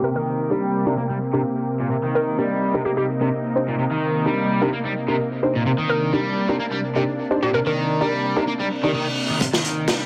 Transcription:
0.00 9.37 C3 medium
0.00 0.08 C3 medium
0.00 9.37 A#3 medium
0.00 1.90 G4 medium
0.00 0.12 A#4 medium
0.16 0.50 D#3 medium
0.16 0.23 A#4 medium
0.50 0.85 G3 medium
0.50 0.64 D4 medium
0.50 0.64 D#4 medium
0.50 0.64 G4 medium
0.50 0.64 A#4 medium
0.86 0.93 C3 medium
0.86 0.99 D4 medium
0.86 0.99 D#4 medium
0.86 0.99 G4 medium
0.86 0.99 A#4 loud
0.97 1.02 A#3 medium
1.09 1.17 G3 medium
1.33 1.40 C3 medium
1.33 1.54 D4 medium
1.33 1.54 D#4 medium
1.33 1.54 G4 medium
1.33 1.54 A#4 medium
1.80 1.87 A#2 medium
1.91 1.96 C3 medium
1.91 5.65 D#4 medium
2.04 2.37 D#3 medium
2.15 2.29 A#4 medium
2.38 2.73 G3 medium
2.38 2.52 D4 medium
2.38 2.52 D#4 medium
2.38 2.52 G4 medium
2.38 2.52 A#4 medium
2.74 2.81 C3 medium
2.74 2.87 D4 loud
2.74 2.87 D#4 medium
2.74 2.87 G4 medium
2.74 2.87 A#4 loud
2.85 2.90 A#3 medium
2.85 2.93 G4 medium
2.97 3.04 G3 medium
2.97 3.04 G4 medium
3.21 3.28 C3 medium
3.21 3.42 D4 medium
3.21 3.42 D#4 medium
3.21 3.42 G4 medium
3.21 3.42 A#4 medium
3.56 3.69 D4 medium
3.56 3.69 D#4 medium
3.56 3.69 G4 medium
3.56 3.69 C5 medium
3.68 3.75 A#2 medium
3.79 3.83 C3 medium
3.91 4.25 D#3 medium
4.26 4.60 G3 medium
4.26 4.39 D4 medium
4.26 4.39 D#4 medium
4.26 4.39 G4 medium
4.26 4.39 A#4 medium
4.61 4.68 C3 medium
4.61 4.74 D4 medium
4.61 4.74 D#4 medium
4.61 4.74 G4 medium
4.61 4.74 A#4 loud
4.73 4.77 A#3 medium
4.85 4.92 G3 medium
5.08 5.15 C3 medium
5.08 5.29 D4 medium
5.08 5.29 D#4 medium
5.08 5.29 G4 medium
5.08 5.29 A#4 medium
5.43 5.56 D4 medium
5.43 5.56 D#4 medium
5.43 5.56 G4 medium
5.43 5.56 C5 medium
5.55 5.62 A#2 medium
5.66 5.71 C3 medium
5.66 9.40 D4 medium
5.78 6.12 D#3 medium
5.90 6.03 A#4 medium
6.13 6.48 G3 medium
6.13 6.27 D4 medium
6.13 6.27 D#4 medium
6.13 6.27 G4 medium
6.13 6.27 A#4 medium
6.48 6.56 C3 medium
6.48 6.62 D4 medium
6.48 6.62 D#4 medium
6.48 6.62 G4 medium
6.48 6.62 A#4 loud
6.60 6.65 A#3 medium
6.72 6.79 G3 medium
6.96 7.03 C3 medium
6.96 7.17 D4 medium
6.96 7.17 D#4 medium
6.96 7.17 G4 medium
6.96 7.17 A#4 medium
7.31 7.44 D4 medium
7.31 7.44 D#4 medium
7.31 7.44 G4 medium
7.31 7.44 C5 medium
7.43 7.50 A#2 medium
7.43 7.52 G4 medium
7.54 7.59 C3 medium
7.54 7.62 A#4 medium
7.66 8.00 D#3 medium
7.66 7.74 A#4 medium
8.01 8.35 G3 medium
8.01 8.14 D4 medium
8.01 8.14 D#4 medium
8.01 8.14 G4 medium
8.01 8.14 A#4 medium
8.36 8.43 C3 medium
8.36 8.49 D4 medium
8.36 8.49 D#4 medium
8.36 8.49 G4 medium
8.36 8.49 A#4 loud
8.48 8.52 A#3 medium
8.48 reverse cymbal medium
8.60 8.67 G3 medium
8.83 8.90 D#3 medium
8.83 9.04 D4 medium
8.83 9.04 D#4 medium
8.83 9.04 G4 medium
8.83 9.04 A#4 medium
8.94 9.06 D#3 medium
9.30 9.37 D#3 medium
9.41 10.06 C3 medium
9.41 9.46 C3 medium
9.41 10.06 A#3 medium
9.41 10.06 D#4 medium
9.41 kick loud
9.41 closed hi-hat medium
9.41 riser medium
9.53 9.87 D#3 medium
9.53 snare soft
9.65 closed hi-hat medium
9.88 10.06 G3 medium
9.88 10.02 D4 medium
9.88 10.02 D#4 medium
9.88 10.02 G4 medium
9.88 10.02 A#4 medium
9.88 snare loud
9.88 closed hi-hat medium

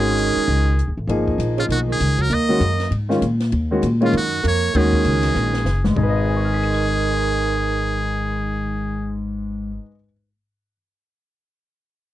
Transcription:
0.00 0.32 G#1 medium
0.00 0.71 D#3 medium
0.00 0.97 D#3 medium
0.00 0.71 G#3 medium
0.00 0.71 C#4 medium
0.00 0.72 F#4 medium
0.00 0.97 G#4 loud
0.18 closed hi-hat medium
0.36 muted upright bass stroke soft
0.48 0.86 C#2 medium
0.48 open hi-hat soft
0.79 closed hi-hat soft
0.88 0.97 D#2 medium
0.97 1.07 A1 medium
1.07 1.38 G#1 medium
1.07 1.93 F3 medium
1.07 1.93 A#3 medium
1.07 1.94 D#4 medium
1.07 1.94 G#4 medium
1.07 ride medium
1.28 kick soft
1.38 1.68 A#1 medium
1.38 hi-hat pedal medium
1.38 ride medium
1.58 1.63 C#3 medium
1.58 1.65 F4 medium
1.58 ride soft
1.69 1.99 B1 medium
1.69 1.78 D#3 medium
1.69 1.80 F#4 medium
1.69 ride medium
1.88 2.21 D#3 medium
1.92 2.23 G#4 medium
2.00 2.29 C#2 medium
2.00 hi-hat pedal medium
2.00 ride medium
2.19 2.32 F#3 medium
2.19 2.35 A#4 medium
2.19 kick soft
2.19 ride soft
2.30 2.60 D#2 medium
2.30 2.92 A#3 medium
2.30 2.93 D#5 medium
2.30 ride medium
2.49 2.60 D#3 medium
2.49 2.60 G#3 medium
2.49 2.60 C#4 medium
2.49 2.60 F#4 medium
2.60 2.90 F#2 medium
2.60 hi-hat pedal medium
2.60 ride medium
2.80 snare soft
2.80 ride soft
2.91 3.21 G#2 medium
2.91 ride medium
3.09 3.20 D#3 medium
3.09 3.20 G#3 medium
3.09 3.21 C#4 medium
3.09 3.21 F4 medium
3.09 snare soft
3.21 3.51 A#2 medium
3.21 hi-hat pedal medium
3.21 ride medium
3.40 snare soft
3.40 ride soft
3.52 3.82 D#2 medium
3.52 ride medium
3.71 3.82 D#3 medium
3.71 3.82 G#3 medium
3.71 3.82 C#4 medium
3.71 3.82 F#4 medium
3.82 4.12 A#2 medium
3.82 hi-hat pedal medium
3.82 ride medium
4.00 4.12 C#3 medium
4.00 4.12 D#3 medium
4.00 4.12 G#3 medium
4.00 4.12 C#4 medium
4.00 4.13 F4 medium
4.00 ride soft
4.05 4.14 F4 medium
4.12 4.43 F#2 medium
4.12 4.41 D#3 medium
4.12 ride medium
4.17 4.44 F#4 medium
4.43 4.74 F2 medium
4.43 4.75 A#3 medium
4.43 hi-hat pedal medium
4.43 ride medium
4.48 4.79 C#5 loud
4.74 5.04 D#2 medium
4.74 5.84 D#3 medium
4.74 5.59 D#3 medium
4.74 5.59 G#3 medium
4.74 5.59 C#4 medium
4.74 5.59 F#4 medium
4.74 5.86 G#4 medium
4.74 ride medium
4.93 kick medium
5.04 5.35 C#2 medium
5.04 hi-hat pedal medium
5.04 ride medium
5.23 snare soft
5.23 ride medium
5.35 5.64 A#1 medium
5.35 snare soft
5.54 snare medium
5.65 5.95 F#1 medium
5.65 snare medium
5.65 hi-hat pedal medium
5.84 9.69 G#2 medium
5.84 snare medium
5.90 9.75 G#3 medium
5.96 9.77 G#1 medium
5.96 9.16 D#3 medium
5.96 9.82 D#4 medium
5.96 9.17 G#4 medium
5.96 kick medium
5.96 floor tom medium
6.03 9.88 B4 medium
6.09 9.94 D#5 medium
6.29 9.87 G#5 soft
6.37 9.91 C#6 soft
6.45 9.95 F6 soft
6.54 10.00 B6 soft
6.63 10.04 D#7 soft
6.74 10.10 G#7 soft

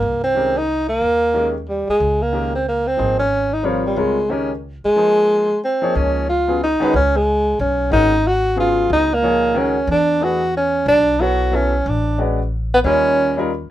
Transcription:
0.00 0.97 C2 medium
0.00 0.20 A#3 medium
0.24 0.59 C4 medium
0.35 0.54 D#3 soft
0.35 0.54 G#3 soft
0.35 0.55 C#4 soft
0.35 0.55 G4 medium
0.35 0.55 A#4 medium
0.58 0.88 D#4 loud
0.89 1.51 A#3 loud
1.01 1.84 D#2 medium
1.34 1.53 D#3 medium
1.34 1.53 G#3 medium
1.34 1.53 C#4 medium
1.34 1.53 G4 soft
1.34 1.54 A#4 medium
1.69 1.88 G3 medium
1.89 2.24 G#3 medium
1.89 muted upright bass stroke soft
2.00 2.95 C#2 medium
2.22 2.54 A#3 medium
2.33 2.52 D#3 medium
2.33 2.52 G#3 soft
2.33 2.52 C#4 soft
2.33 2.52 G4 soft
2.33 2.53 A#4 medium
2.55 2.66 C4 medium
2.68 2.89 A#3 medium
2.87 3.18 C4 medium
2.97 3.94 G#1 medium
2.97 3.17 F3 soft
2.97 3.17 A#3 soft
2.97 3.17 D#4 soft
2.97 3.17 G#4 medium
2.97 3.18 C5 medium
3.19 3.55 C#4 medium
3.53 3.67 D#4 medium
3.63 4.14 C3 medium
3.63 3.86 F3 medium
3.63 3.95 G3 medium
3.63 3.96 F4 medium
3.63 3.96 A#4 medium
3.63 3.96 C#5 medium
3.86 4.00 G3 medium
3.96 4.80 C#2 medium
3.96 4.16 G3 medium
3.96 4.33 G#3 medium
3.96 4.16 C4 medium
3.96 4.16 F4 medium
3.96 4.16 A#4 medium
3.96 4.17 C#5 medium
4.29 4.49 D#3 medium
4.29 4.49 G#3 medium
4.29 4.49 C#4 medium
4.29 4.52 C#4 medium
4.29 4.50 G4 medium
4.29 4.50 A#4 medium
4.84 5.58 G#3 loud
4.84 muted upright bass stroke soft
4.96 5.46 F3 medium
4.96 5.46 A#3 medium
4.96 5.46 D#4 medium
4.96 5.46 G#4 medium
4.96 5.47 C5 medium
5.65 5.98 C4 medium
5.82 6.25 F3 medium
5.82 6.25 A#3 medium
5.82 6.25 D#4 medium
5.82 6.25 G#4 medium
5.82 6.26 C#5 medium
5.95 6.78 C#2 medium
5.95 6.29 C#4 medium
6.29 6.59 F4 medium
6.47 6.59 C#3 medium
6.47 6.59 F#3 medium
6.47 6.59 B3 medium
6.47 6.60 F4 medium
6.47 6.60 G#4 medium
6.63 6.93 D#4 loud
6.80 6.92 D#3 medium
6.80 6.92 G#3 medium
6.80 6.92 C#4 medium
6.80 6.92 F#4 medium
6.80 6.93 B4 loud
6.80 muted upright bass stroke soft
6.94 7.55 C#2 medium
6.94 7.18 C#4 loud
7.16 7.60 G#3 medium
7.59 7.90 B1 medium
7.59 7.91 C#4 medium
7.91 8.86 G#1 medium
7.91 8.10 D#3 medium
7.91 8.11 G#3 medium
7.91 8.11 C#4 medium
7.91 8.28 D#4 loud
7.91 8.11 F#4 medium
7.91 8.11 A#4 medium
8.27 8.59 F#4 loud
8.56 9.06 C#3 medium
8.56 9.07 F#3 medium
8.56 9.07 B3 medium
8.56 9.07 F4 medium
8.56 8.89 F4 medium
8.56 9.07 G#4 medium
8.90 9.85 C#2 medium
8.90 9.15 D#4 loud
9.14 9.59 A#3 loud
9.22 9.55 A#2 medium
9.22 9.55 F3 medium
9.22 9.55 D#4 soft
9.22 9.55 G#4 medium
9.22 9.55 C#5 medium
9.54 9.74 D#3 medium
9.54 9.74 G#3 medium
9.54 9.75 C#4 medium
9.54 9.90 C#4 medium
9.54 9.75 F#4 medium
9.54 9.75 A#4 medium
9.87 10.83 E2 medium
9.87 10.25 D4 loud
10.20 10.40 E3 medium
10.20 10.40 A3 soft
10.20 10.40 D4 medium
10.20 10.56 F#4 medium
10.20 10.41 G#4 medium
10.20 10.41 B4 medium
10.57 10.87 C#4 medium
10.86 11.81 B1 medium
10.86 11.23 D4 loud
11.20 11.50 F#3 medium
11.20 11.51 B3 medium
11.20 11.51 E4 medium
11.20 11.57 F#4 medium
11.20 11.52 A4 medium
11.20 11.53 C#5 medium
11.51 11.71 F#3 medium
11.51 11.72 B3 medium
11.51 11.90 C#4 medium
11.51 11.72 E4 medium
11.51 11.72 A4 medium
11.51 11.72 E5 medium
11.86 12.81 A1 medium
11.86 12.20 D4 medium
12.18 12.37 G#3 medium
12.18 12.38 C#4 medium
12.18 12.38 F#4 medium
12.18 12.38 B4 medium
12.18 12.38 D5 medium
12.74 12.79 B3 loud
12.84 13.67 D#2 medium
12.84 13.34 G3 medium
12.84 13.34 C#4 medium
12.84 13.47 C#4 loud
12.84 13.35 D#4 medium
12.84 13.35 F4 medium
12.84 13.35 A#4 medium
13.37 13.49 G3 medium
13.37 13.49 C#4 medium
13.37 13.49 D#4 medium
13.37 13.49 F4 medium
13.37 13.50 A#4 medium

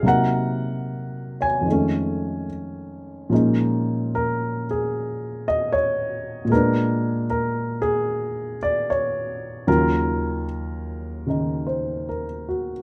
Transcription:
0.03 1.65 C3 soft
0.03 1.66 F#3 soft
0.03 1.66 A#3 soft
0.03 1.67 D#4 medium
0.03 1.35 A#4 medium
0.08 1.44 F#5 medium
1.41 2.46 C#5 medium
1.41 2.47 G#5 medium
1.61 3.29 F2 soft
1.61 3.30 D#3 soft
1.67 3.30 G#3 soft
1.67 3.33 A3 soft
1.72 3.31 C#4 medium
3.30 6.43 A#2 medium
3.30 6.49 F3 soft
3.30 6.48 G#3 soft
3.30 6.50 A#3 medium
3.30 6.51 C#4 soft
3.34 6.51 D#4 medium
4.15 4.63 A#4 medium
4.71 5.44 G#4 medium
5.48 5.72 D#5 medium
5.73 6.46 C#5 medium
6.45 9.65 A#2 medium
6.49 9.67 G#3 medium
6.49 9.68 B3 medium
6.49 7.26 A#4 medium
6.55 9.70 D4 medium
7.30 7.79 A#4 medium
7.82 8.57 G#4 medium
8.63 8.88 D5 medium
8.90 9.64 C#5 medium
9.67 12.82 D#2 medium
9.67 11.25 C#3 medium
9.67 12.82 F#3 medium
9.67 12.82 F4 medium
9.67 10.44 A#4 medium
11.27 12.82 C#3 soft
11.27 12.82 D#3 soft
11.27 12.82 D#4 soft
11.67 12.23 C5 soft
12.09 12.71 A#4 medium
12.49 12.82 F#4 soft

